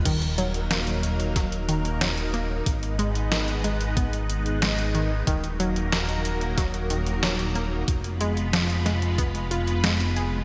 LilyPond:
<<
  \new Staff \with { instrumentName = "String machine" } { \time 4/4 \key ees \minor \tempo 4 = 92 << { <ges bes bes'>1 | <aes ces' ces''>1 | <ges bes bes'>1 | <aes ces' ces''>1 | } \\ { ees'1~ | ees'1~ | ees'1 | f'1 | } >> }
  \new Staff \with { instrumentName = "Synth arpeggio sound" } { \clef bass \time 4/4 \key ees \minor ees8 ges8 bes16 r8. ges8 ees8 ges8 bes8 | r8 aes8 ees8 aes16 r16 ces'8 r8 aes8 ees16 r16 | ees8 ges8 bes16 r8. ges8 ees8 ges8 bes8 | r8 aes8 f8 aes16 r16 ces'8 f'8 aes8 aes'8 | }
  \new Staff \with { instrumentName = "Analog synth bass" } { \clef bass \time 4/4 \key ees \minor ees,,1 | aes,,1 | ees,,1 | f,,1 | }
  \new DrumStaff \with { instrumentName = "Drums" } \drummode { \time 4/4 <cymc hh bd>16 hh16 hh16 hh16 <hh sn>16 hh16 hh16 hh16 <hh bd sn>16 hh16 hh16 hh16 <hh sn>16 hh16 hh8 | <hh bd>16 hh16 hh16 hh16 <hh sn>16 hh16 hh16 hh16 <hh bd>16 hh16 hh16 hh16 <hh sn>16 hh16 hh8 | <hh bd>16 hh16 hh16 hh16 <hh sn>16 hh16 hh16 hh16 <hh bd sn>16 hh16 hh16 hh16 <hh sn>16 hh16 hh8 | <hh bd>16 hh16 hh16 hh16 <hh sn>16 hh16 <hh sn>16 hh16 <hh bd>16 hh16 hh16 hh16 <hh sn>16 hh16 hh8 | }
>>